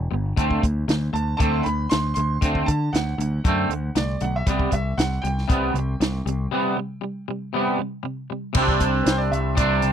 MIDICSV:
0, 0, Header, 1, 5, 480
1, 0, Start_track
1, 0, Tempo, 510638
1, 358, Time_signature, 4, 2, 24, 8
1, 9330, End_track
2, 0, Start_track
2, 0, Title_t, "Upright piano"
2, 0, Program_c, 0, 0
2, 1066, Note_on_c, 0, 81, 78
2, 1274, Note_off_c, 0, 81, 0
2, 1288, Note_on_c, 0, 81, 83
2, 1534, Note_on_c, 0, 83, 80
2, 1550, Note_off_c, 0, 81, 0
2, 1781, Note_on_c, 0, 84, 96
2, 1793, Note_off_c, 0, 83, 0
2, 1997, Note_off_c, 0, 84, 0
2, 2011, Note_on_c, 0, 84, 90
2, 2502, Note_on_c, 0, 81, 81
2, 2520, Note_off_c, 0, 84, 0
2, 2751, Note_on_c, 0, 78, 83
2, 2758, Note_off_c, 0, 81, 0
2, 3725, Note_on_c, 0, 74, 74
2, 3744, Note_off_c, 0, 78, 0
2, 3966, Note_on_c, 0, 78, 71
2, 3969, Note_off_c, 0, 74, 0
2, 4086, Note_off_c, 0, 78, 0
2, 4097, Note_on_c, 0, 76, 72
2, 4212, Note_off_c, 0, 76, 0
2, 4219, Note_on_c, 0, 74, 77
2, 4447, Note_on_c, 0, 76, 77
2, 4456, Note_off_c, 0, 74, 0
2, 4677, Note_on_c, 0, 78, 85
2, 4691, Note_off_c, 0, 76, 0
2, 4902, Note_off_c, 0, 78, 0
2, 4903, Note_on_c, 0, 79, 73
2, 7516, Note_off_c, 0, 79, 0
2, 8475, Note_on_c, 0, 71, 55
2, 8507, Note_off_c, 0, 71, 0
2, 8527, Note_on_c, 0, 72, 80
2, 8627, Note_on_c, 0, 74, 69
2, 8636, Note_off_c, 0, 72, 0
2, 8745, Note_off_c, 0, 74, 0
2, 8757, Note_on_c, 0, 76, 75
2, 8991, Note_off_c, 0, 76, 0
2, 8991, Note_on_c, 0, 74, 87
2, 9228, Note_off_c, 0, 74, 0
2, 9330, End_track
3, 0, Start_track
3, 0, Title_t, "Clean electric guitar"
3, 0, Program_c, 1, 27
3, 101, Note_on_c, 1, 55, 59
3, 108, Note_on_c, 1, 59, 65
3, 325, Note_off_c, 1, 55, 0
3, 329, Note_off_c, 1, 59, 0
3, 343, Note_on_c, 1, 50, 70
3, 353, Note_on_c, 1, 57, 80
3, 353, Note_on_c, 1, 60, 84
3, 570, Note_off_c, 1, 50, 0
3, 575, Note_off_c, 1, 57, 0
3, 581, Note_off_c, 1, 60, 0
3, 581, Note_on_c, 1, 50, 61
3, 586, Note_on_c, 1, 57, 68
3, 805, Note_off_c, 1, 50, 0
3, 808, Note_off_c, 1, 57, 0
3, 829, Note_on_c, 1, 50, 57
3, 831, Note_on_c, 1, 57, 73
3, 1049, Note_off_c, 1, 50, 0
3, 1050, Note_off_c, 1, 57, 0
3, 1062, Note_on_c, 1, 50, 58
3, 1062, Note_on_c, 1, 57, 66
3, 1286, Note_off_c, 1, 50, 0
3, 1286, Note_off_c, 1, 57, 0
3, 1301, Note_on_c, 1, 50, 75
3, 1309, Note_on_c, 1, 57, 79
3, 1315, Note_on_c, 1, 60, 88
3, 1535, Note_off_c, 1, 50, 0
3, 1539, Note_off_c, 1, 57, 0
3, 1542, Note_off_c, 1, 60, 0
3, 1563, Note_on_c, 1, 57, 61
3, 1566, Note_on_c, 1, 50, 60
3, 1776, Note_off_c, 1, 57, 0
3, 1778, Note_off_c, 1, 50, 0
3, 1800, Note_on_c, 1, 50, 62
3, 1800, Note_on_c, 1, 57, 72
3, 2015, Note_off_c, 1, 50, 0
3, 2015, Note_off_c, 1, 57, 0
3, 2040, Note_on_c, 1, 50, 63
3, 2044, Note_on_c, 1, 57, 66
3, 2255, Note_off_c, 1, 50, 0
3, 2257, Note_off_c, 1, 57, 0
3, 2268, Note_on_c, 1, 50, 73
3, 2278, Note_on_c, 1, 57, 79
3, 2278, Note_on_c, 1, 60, 86
3, 2499, Note_off_c, 1, 50, 0
3, 2504, Note_off_c, 1, 57, 0
3, 2504, Note_off_c, 1, 60, 0
3, 2523, Note_on_c, 1, 50, 60
3, 2525, Note_on_c, 1, 57, 67
3, 2737, Note_off_c, 1, 50, 0
3, 2738, Note_off_c, 1, 57, 0
3, 2756, Note_on_c, 1, 50, 56
3, 2767, Note_on_c, 1, 57, 65
3, 2973, Note_off_c, 1, 50, 0
3, 2979, Note_off_c, 1, 57, 0
3, 2994, Note_on_c, 1, 50, 60
3, 2995, Note_on_c, 1, 57, 59
3, 3212, Note_off_c, 1, 50, 0
3, 3213, Note_off_c, 1, 57, 0
3, 3237, Note_on_c, 1, 50, 72
3, 3243, Note_on_c, 1, 57, 74
3, 3254, Note_on_c, 1, 60, 82
3, 3464, Note_off_c, 1, 50, 0
3, 3466, Note_off_c, 1, 57, 0
3, 3472, Note_off_c, 1, 60, 0
3, 3478, Note_on_c, 1, 50, 63
3, 3481, Note_on_c, 1, 57, 67
3, 3695, Note_off_c, 1, 50, 0
3, 3696, Note_off_c, 1, 57, 0
3, 3717, Note_on_c, 1, 50, 65
3, 3720, Note_on_c, 1, 57, 72
3, 3934, Note_off_c, 1, 50, 0
3, 3936, Note_off_c, 1, 57, 0
3, 3958, Note_on_c, 1, 50, 63
3, 3963, Note_on_c, 1, 57, 67
3, 4175, Note_off_c, 1, 50, 0
3, 4177, Note_off_c, 1, 57, 0
3, 4197, Note_on_c, 1, 48, 81
3, 4205, Note_on_c, 1, 55, 87
3, 4210, Note_on_c, 1, 59, 81
3, 4417, Note_off_c, 1, 48, 0
3, 4419, Note_off_c, 1, 55, 0
3, 4428, Note_on_c, 1, 48, 72
3, 4430, Note_off_c, 1, 59, 0
3, 4430, Note_on_c, 1, 55, 79
3, 4650, Note_off_c, 1, 48, 0
3, 4651, Note_off_c, 1, 55, 0
3, 4681, Note_on_c, 1, 48, 68
3, 4683, Note_on_c, 1, 55, 71
3, 4897, Note_off_c, 1, 48, 0
3, 4897, Note_off_c, 1, 55, 0
3, 4921, Note_on_c, 1, 48, 59
3, 4927, Note_on_c, 1, 55, 65
3, 5137, Note_off_c, 1, 48, 0
3, 5138, Note_off_c, 1, 55, 0
3, 5148, Note_on_c, 1, 48, 72
3, 5149, Note_on_c, 1, 55, 71
3, 5158, Note_on_c, 1, 59, 89
3, 5380, Note_off_c, 1, 48, 0
3, 5381, Note_off_c, 1, 55, 0
3, 5385, Note_off_c, 1, 59, 0
3, 5409, Note_on_c, 1, 48, 63
3, 5417, Note_on_c, 1, 55, 70
3, 5621, Note_off_c, 1, 48, 0
3, 5625, Note_off_c, 1, 55, 0
3, 5647, Note_on_c, 1, 48, 58
3, 5649, Note_on_c, 1, 55, 72
3, 5860, Note_off_c, 1, 48, 0
3, 5861, Note_off_c, 1, 55, 0
3, 5885, Note_on_c, 1, 55, 67
3, 5888, Note_on_c, 1, 48, 64
3, 6099, Note_off_c, 1, 55, 0
3, 6101, Note_off_c, 1, 48, 0
3, 6123, Note_on_c, 1, 48, 70
3, 6125, Note_on_c, 1, 55, 80
3, 6132, Note_on_c, 1, 59, 88
3, 6348, Note_off_c, 1, 48, 0
3, 6349, Note_off_c, 1, 55, 0
3, 6353, Note_off_c, 1, 59, 0
3, 6361, Note_on_c, 1, 55, 65
3, 6366, Note_on_c, 1, 48, 62
3, 6578, Note_off_c, 1, 55, 0
3, 6580, Note_off_c, 1, 48, 0
3, 6591, Note_on_c, 1, 48, 61
3, 6596, Note_on_c, 1, 55, 70
3, 6813, Note_off_c, 1, 48, 0
3, 6815, Note_off_c, 1, 55, 0
3, 6845, Note_on_c, 1, 48, 63
3, 6845, Note_on_c, 1, 55, 68
3, 7059, Note_off_c, 1, 48, 0
3, 7059, Note_off_c, 1, 55, 0
3, 7077, Note_on_c, 1, 48, 65
3, 7088, Note_on_c, 1, 59, 83
3, 7090, Note_on_c, 1, 55, 79
3, 7305, Note_off_c, 1, 48, 0
3, 7311, Note_off_c, 1, 55, 0
3, 7311, Note_off_c, 1, 59, 0
3, 7316, Note_on_c, 1, 48, 67
3, 7327, Note_on_c, 1, 55, 63
3, 7535, Note_off_c, 1, 48, 0
3, 7537, Note_off_c, 1, 55, 0
3, 7548, Note_on_c, 1, 55, 66
3, 7549, Note_on_c, 1, 48, 57
3, 7771, Note_off_c, 1, 55, 0
3, 7772, Note_off_c, 1, 48, 0
3, 7801, Note_on_c, 1, 48, 55
3, 7803, Note_on_c, 1, 55, 68
3, 8006, Note_off_c, 1, 48, 0
3, 8017, Note_on_c, 1, 48, 67
3, 8018, Note_off_c, 1, 55, 0
3, 8034, Note_on_c, 1, 55, 71
3, 8040, Note_on_c, 1, 60, 85
3, 8050, Note_on_c, 1, 62, 86
3, 8969, Note_off_c, 1, 48, 0
3, 8980, Note_on_c, 1, 48, 74
3, 8982, Note_off_c, 1, 55, 0
3, 8985, Note_off_c, 1, 60, 0
3, 8994, Note_on_c, 1, 55, 74
3, 8997, Note_on_c, 1, 60, 73
3, 8998, Note_off_c, 1, 62, 0
3, 9001, Note_on_c, 1, 62, 81
3, 9330, Note_off_c, 1, 48, 0
3, 9330, Note_off_c, 1, 55, 0
3, 9330, Note_off_c, 1, 60, 0
3, 9330, Note_off_c, 1, 62, 0
3, 9330, End_track
4, 0, Start_track
4, 0, Title_t, "Picked electric bass"
4, 0, Program_c, 2, 34
4, 116, Note_on_c, 2, 31, 71
4, 304, Note_off_c, 2, 31, 0
4, 355, Note_on_c, 2, 38, 81
4, 544, Note_off_c, 2, 38, 0
4, 595, Note_on_c, 2, 38, 72
4, 784, Note_off_c, 2, 38, 0
4, 828, Note_on_c, 2, 38, 77
4, 1019, Note_off_c, 2, 38, 0
4, 1067, Note_on_c, 2, 38, 76
4, 1258, Note_off_c, 2, 38, 0
4, 1318, Note_on_c, 2, 38, 74
4, 1506, Note_off_c, 2, 38, 0
4, 1562, Note_on_c, 2, 38, 70
4, 1748, Note_off_c, 2, 38, 0
4, 1808, Note_on_c, 2, 38, 66
4, 1991, Note_off_c, 2, 38, 0
4, 2039, Note_on_c, 2, 38, 74
4, 2226, Note_off_c, 2, 38, 0
4, 2277, Note_on_c, 2, 38, 83
4, 2465, Note_off_c, 2, 38, 0
4, 2523, Note_on_c, 2, 50, 77
4, 2709, Note_off_c, 2, 50, 0
4, 2757, Note_on_c, 2, 38, 80
4, 2945, Note_off_c, 2, 38, 0
4, 2992, Note_on_c, 2, 38, 79
4, 3182, Note_off_c, 2, 38, 0
4, 3241, Note_on_c, 2, 42, 82
4, 3428, Note_off_c, 2, 42, 0
4, 3462, Note_on_c, 2, 38, 76
4, 3656, Note_off_c, 2, 38, 0
4, 3718, Note_on_c, 2, 36, 75
4, 3906, Note_off_c, 2, 36, 0
4, 3963, Note_on_c, 2, 35, 72
4, 4149, Note_off_c, 2, 35, 0
4, 4199, Note_on_c, 2, 36, 88
4, 4387, Note_off_c, 2, 36, 0
4, 4440, Note_on_c, 2, 36, 79
4, 4628, Note_off_c, 2, 36, 0
4, 4680, Note_on_c, 2, 36, 80
4, 4868, Note_off_c, 2, 36, 0
4, 4923, Note_on_c, 2, 36, 75
4, 5110, Note_off_c, 2, 36, 0
4, 5166, Note_on_c, 2, 36, 86
4, 5352, Note_off_c, 2, 36, 0
4, 5396, Note_on_c, 2, 36, 77
4, 5586, Note_off_c, 2, 36, 0
4, 5643, Note_on_c, 2, 36, 75
4, 5830, Note_off_c, 2, 36, 0
4, 5881, Note_on_c, 2, 36, 74
4, 6069, Note_off_c, 2, 36, 0
4, 8041, Note_on_c, 2, 36, 82
4, 8469, Note_off_c, 2, 36, 0
4, 8518, Note_on_c, 2, 36, 79
4, 8734, Note_off_c, 2, 36, 0
4, 8758, Note_on_c, 2, 36, 79
4, 8973, Note_off_c, 2, 36, 0
4, 9001, Note_on_c, 2, 36, 82
4, 9214, Note_off_c, 2, 36, 0
4, 9243, Note_on_c, 2, 36, 81
4, 9330, Note_off_c, 2, 36, 0
4, 9330, End_track
5, 0, Start_track
5, 0, Title_t, "Drums"
5, 352, Note_on_c, 9, 36, 94
5, 356, Note_on_c, 9, 42, 68
5, 446, Note_off_c, 9, 36, 0
5, 450, Note_off_c, 9, 42, 0
5, 475, Note_on_c, 9, 36, 75
5, 569, Note_off_c, 9, 36, 0
5, 596, Note_on_c, 9, 36, 78
5, 601, Note_on_c, 9, 42, 54
5, 690, Note_off_c, 9, 36, 0
5, 695, Note_off_c, 9, 42, 0
5, 836, Note_on_c, 9, 42, 71
5, 847, Note_on_c, 9, 38, 99
5, 930, Note_off_c, 9, 42, 0
5, 941, Note_off_c, 9, 38, 0
5, 1086, Note_on_c, 9, 42, 50
5, 1180, Note_off_c, 9, 42, 0
5, 1317, Note_on_c, 9, 36, 91
5, 1318, Note_on_c, 9, 42, 69
5, 1411, Note_off_c, 9, 36, 0
5, 1412, Note_off_c, 9, 42, 0
5, 1561, Note_on_c, 9, 42, 49
5, 1655, Note_off_c, 9, 42, 0
5, 1794, Note_on_c, 9, 42, 69
5, 1804, Note_on_c, 9, 38, 93
5, 1888, Note_off_c, 9, 42, 0
5, 1898, Note_off_c, 9, 38, 0
5, 2027, Note_on_c, 9, 42, 58
5, 2121, Note_off_c, 9, 42, 0
5, 2275, Note_on_c, 9, 42, 75
5, 2277, Note_on_c, 9, 36, 102
5, 2369, Note_off_c, 9, 42, 0
5, 2371, Note_off_c, 9, 36, 0
5, 2398, Note_on_c, 9, 36, 74
5, 2492, Note_off_c, 9, 36, 0
5, 2520, Note_on_c, 9, 36, 68
5, 2521, Note_on_c, 9, 42, 61
5, 2614, Note_off_c, 9, 36, 0
5, 2615, Note_off_c, 9, 42, 0
5, 2769, Note_on_c, 9, 42, 79
5, 2779, Note_on_c, 9, 38, 98
5, 2863, Note_off_c, 9, 42, 0
5, 2873, Note_off_c, 9, 38, 0
5, 3012, Note_on_c, 9, 42, 62
5, 3106, Note_off_c, 9, 42, 0
5, 3240, Note_on_c, 9, 42, 70
5, 3242, Note_on_c, 9, 36, 94
5, 3334, Note_off_c, 9, 42, 0
5, 3336, Note_off_c, 9, 36, 0
5, 3484, Note_on_c, 9, 42, 54
5, 3578, Note_off_c, 9, 42, 0
5, 3718, Note_on_c, 9, 42, 72
5, 3729, Note_on_c, 9, 38, 96
5, 3812, Note_off_c, 9, 42, 0
5, 3823, Note_off_c, 9, 38, 0
5, 3953, Note_on_c, 9, 42, 57
5, 4047, Note_off_c, 9, 42, 0
5, 4198, Note_on_c, 9, 42, 76
5, 4200, Note_on_c, 9, 36, 99
5, 4292, Note_off_c, 9, 42, 0
5, 4294, Note_off_c, 9, 36, 0
5, 4319, Note_on_c, 9, 36, 79
5, 4413, Note_off_c, 9, 36, 0
5, 4434, Note_on_c, 9, 42, 54
5, 4439, Note_on_c, 9, 36, 71
5, 4528, Note_off_c, 9, 42, 0
5, 4533, Note_off_c, 9, 36, 0
5, 4689, Note_on_c, 9, 42, 74
5, 4699, Note_on_c, 9, 38, 98
5, 4783, Note_off_c, 9, 42, 0
5, 4793, Note_off_c, 9, 38, 0
5, 4931, Note_on_c, 9, 42, 51
5, 5025, Note_off_c, 9, 42, 0
5, 5058, Note_on_c, 9, 38, 29
5, 5152, Note_off_c, 9, 38, 0
5, 5166, Note_on_c, 9, 42, 66
5, 5167, Note_on_c, 9, 36, 98
5, 5260, Note_off_c, 9, 42, 0
5, 5261, Note_off_c, 9, 36, 0
5, 5410, Note_on_c, 9, 42, 50
5, 5504, Note_off_c, 9, 42, 0
5, 5652, Note_on_c, 9, 42, 72
5, 5662, Note_on_c, 9, 38, 101
5, 5746, Note_off_c, 9, 42, 0
5, 5756, Note_off_c, 9, 38, 0
5, 5896, Note_on_c, 9, 42, 54
5, 5990, Note_off_c, 9, 42, 0
5, 8033, Note_on_c, 9, 49, 104
5, 8039, Note_on_c, 9, 36, 96
5, 8127, Note_off_c, 9, 49, 0
5, 8133, Note_off_c, 9, 36, 0
5, 8161, Note_on_c, 9, 36, 75
5, 8255, Note_off_c, 9, 36, 0
5, 8275, Note_on_c, 9, 42, 62
5, 8278, Note_on_c, 9, 36, 76
5, 8369, Note_off_c, 9, 42, 0
5, 8372, Note_off_c, 9, 36, 0
5, 8521, Note_on_c, 9, 42, 80
5, 8531, Note_on_c, 9, 38, 97
5, 8615, Note_off_c, 9, 42, 0
5, 8625, Note_off_c, 9, 38, 0
5, 8772, Note_on_c, 9, 42, 60
5, 8866, Note_off_c, 9, 42, 0
5, 8999, Note_on_c, 9, 36, 86
5, 8999, Note_on_c, 9, 42, 84
5, 9093, Note_off_c, 9, 36, 0
5, 9093, Note_off_c, 9, 42, 0
5, 9233, Note_on_c, 9, 42, 60
5, 9327, Note_off_c, 9, 42, 0
5, 9330, End_track
0, 0, End_of_file